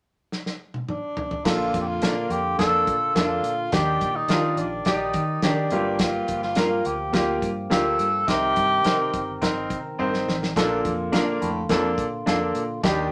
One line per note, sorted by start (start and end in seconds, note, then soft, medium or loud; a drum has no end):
0.32 snare medium
0.46 snare medium
0.74 high tom medium
0.89 1.47 D4 medium
0.89 mid tom medium
1.17 floor tom medium
1.31 floor tom medium
1.45 1.69 A#1 medium
1.45 2.27 A#2 medium
1.45 3.70 D3 medium
1.45 3.70 A#3 soft
1.45 1.80 A#3 medium
1.45 1.80 D4 medium
1.45 3.70 F4 medium
1.45 1.80 F4 loud
1.45 1.80 A4 medium
1.45 kick loud
1.45 snare loud
1.45 crash medium
1.74 1.98 F2 medium
1.74 kick medium
1.74 closed hi-hat medium
1.81 1.89 G4 medium
1.87 2.33 F4 medium
2.01 2.26 A#2 medium
2.01 2.37 A#3 medium
2.01 2.12 A#3 medium
2.01 2.37 D4 medium
2.01 2.12 D4 medium
2.01 2.12 A4 medium
2.01 2.37 A#4 medium
2.01 snare loud
2.01 closed hi-hat medium
2.30 2.54 F2 medium
2.30 2.58 G4 medium
2.30 closed hi-hat medium
2.58 2.83 F2 loud
2.58 2.93 A#3 medium
2.58 2.94 D4 medium
2.58 3.12 A4 loud
2.58 2.94 A4 medium
2.58 kick medium
2.58 snare medium
2.58 closed hi-hat medium
2.87 3.11 A#2 medium
2.87 kick medium
2.87 closed hi-hat medium
3.15 3.39 F2 medium
3.15 3.25 A#3 medium
3.15 3.50 A#3 medium
3.15 3.51 D4 medium
3.15 3.25 D4 medium
3.15 3.75 F4 medium
3.15 3.51 A4 medium
3.15 3.26 A4 medium
3.15 snare loud
3.15 closed hi-hat medium
3.43 3.67 A#2 medium
3.43 closed hi-hat medium
3.72 3.97 D#2 loud
3.72 4.54 D#3 medium
3.72 5.70 D#3 medium
3.72 4.07 D4 medium
3.72 4.07 D#4 medium
3.72 4.08 G4 medium
3.72 8.24 G4 medium
3.72 4.17 G4 loud
3.72 5.70 D5 medium
3.72 kick loud
3.72 snare loud
3.72 closed hi-hat medium
4.01 4.25 A#2 medium
4.01 kick medium
4.01 closed hi-hat medium
4.16 4.60 D#4 medium
4.28 4.58 D#3 medium
4.28 4.39 D4 medium
4.28 4.64 D4 medium
4.28 4.64 D#4 medium
4.28 4.65 F4 medium
4.28 4.39 G4 medium
4.28 4.40 A#4 medium
4.28 snare loud
4.28 closed hi-hat medium
4.56 4.81 A#1 medium
4.56 4.86 D4 medium
4.56 closed hi-hat medium
4.85 5.10 A#1 medium
4.85 5.21 D#4 medium
4.85 5.40 D#4 medium
4.85 5.22 G4 medium
4.85 5.21 D5 medium
4.85 kick medium
4.85 snare medium
4.85 closed hi-hat medium
5.14 5.38 D#3 medium
5.14 kick medium
5.14 closed hi-hat medium
5.42 5.67 D#3 medium
5.42 5.53 D4 medium
5.42 5.72 D4 medium
5.42 6.03 D4 medium
5.42 5.72 D#4 medium
5.42 5.53 G4 medium
5.42 5.71 G4 medium
5.42 5.53 A#4 medium
5.42 snare loud
5.42 closed hi-hat medium
5.70 6.19 G1 medium
5.70 6.53 G2 medium
5.70 8.25 F3 medium
5.70 8.25 A#3 medium
5.70 6.40 A#3 medium
5.70 6.40 F4 medium
5.70 6.40 G4 medium
5.70 closed hi-hat medium
5.99 6.43 F4 loud
5.99 kick loud
5.99 snare loud
5.99 closed hi-hat medium
6.28 6.53 G1 medium
6.28 kick medium
6.28 closed hi-hat medium
6.43 6.88 F4 medium
6.43 snare soft
6.55 6.80 G2 medium
6.55 6.91 A#3 medium
6.55 6.66 D4 medium
6.55 6.91 F4 medium
6.55 6.66 F4 medium
6.55 6.92 A#4 medium
6.55 6.67 A#4 loud
6.55 snare medium
6.55 closed hi-hat medium
6.85 7.09 D2 medium
6.85 7.44 G4 medium
6.85 closed hi-hat medium
7.13 7.38 D2 medium
7.13 7.48 A#3 medium
7.13 7.48 F4 medium
7.13 7.49 G4 medium
7.13 kick medium
7.13 snare loud
7.13 closed hi-hat medium
7.42 7.66 G2 medium
7.42 kick medium
7.42 closed hi-hat medium
7.70 7.95 D2 medium
7.70 8.05 A#3 medium
7.70 7.80 D4 medium
7.70 8.05 F4 medium
7.70 7.81 F4 medium
7.70 8.06 G4 medium
7.70 8.30 A4 medium
7.70 7.81 A#4 medium
7.70 snare loud
7.70 closed hi-hat medium
7.99 8.23 G2 medium
7.99 closed hi-hat medium
8.27 8.52 C2 medium
8.27 9.09 C3 medium
8.27 10.54 D#3 medium
8.27 8.62 C4 medium
8.27 10.54 C4 medium
8.27 8.62 D#4 medium
8.27 9.42 G4 loud
8.27 8.63 A#4 medium
8.27 10.54 A#4 medium
8.27 kick loud
8.27 snare medium
8.27 closed hi-hat medium
8.56 8.81 G2 medium
8.56 kick medium
8.56 closed hi-hat medium
8.84 9.09 C3 loud
8.84 9.19 C4 medium
8.84 8.95 C4 medium
8.84 9.20 D#4 medium
8.84 8.95 D#4 medium
8.84 9.20 A#4 medium
8.84 8.95 A#4 medium
8.84 snare loud
8.84 closed hi-hat medium
9.13 9.38 G1 medium
9.13 kick medium
9.13 closed hi-hat medium
9.42 9.66 G1 medium
9.42 9.76 C4 medium
9.42 9.77 D#4 medium
9.42 9.77 A#4 medium
9.42 kick medium
9.42 snare medium
9.42 closed hi-hat medium
9.70 9.94 C3 medium
9.70 kick medium
9.70 closed hi-hat medium
9.99 10.23 G2 medium
9.99 10.08 C4 medium
9.99 10.34 C4 medium
9.99 10.34 D#4 medium
9.99 10.09 D#4 medium
9.99 10.09 A#4 medium
9.99 10.34 C5 medium
10.14 snare medium
10.28 10.52 A1 medium
10.28 snare medium
10.43 snare medium
10.56 10.80 A#1 loud
10.56 10.79 A#2 medium
10.56 11.38 A#2 medium
10.56 12.82 D3 medium
10.56 12.82 A#3 medium
10.56 10.91 A#3 medium
10.56 10.91 D4 medium
10.56 12.82 F4 medium
10.56 10.91 A4 medium
10.56 kick medium
10.56 snare loud
10.56 closed hi-hat loud
10.85 11.09 F2 medium
10.85 kick medium
10.85 closed hi-hat medium
11.12 11.37 A#2 medium
11.12 11.47 A#3 medium
11.12 11.22 D4 medium
11.12 11.47 D4 medium
11.12 11.22 F4 medium
11.12 11.23 A4 medium
11.12 11.48 A#4 medium
11.12 snare loud
11.12 closed hi-hat medium
11.40 11.66 F2 medium
11.40 11.64 A2 medium
11.40 closed hi-hat medium
11.69 11.94 F2 medium
11.69 11.92 F2 medium
11.69 12.04 A#3 medium
11.69 12.05 D4 medium
11.69 12.05 A4 medium
11.69 kick medium
11.69 snare medium
11.69 closed hi-hat medium
11.98 12.22 A#2 medium
11.98 kick medium
11.98 closed hi-hat medium
12.26 12.51 F2 medium
12.26 12.61 A#3 medium
12.26 12.36 D4 medium
12.26 12.62 D4 medium
12.26 12.36 F4 medium
12.26 12.62 A4 medium
12.26 12.37 A4 medium
12.26 snare loud
12.26 closed hi-hat medium
12.55 12.79 A#2 medium
12.55 closed hi-hat medium
12.83 13.08 D#2 medium
12.83 13.07 D#2 medium
12.83 13.12 D#3 medium
12.83 13.12 D4 medium
12.83 13.12 D#4 medium
12.83 13.12 G4 medium
12.83 13.12 D5 medium
12.83 kick loud
12.83 snare loud
12.83 closed hi-hat medium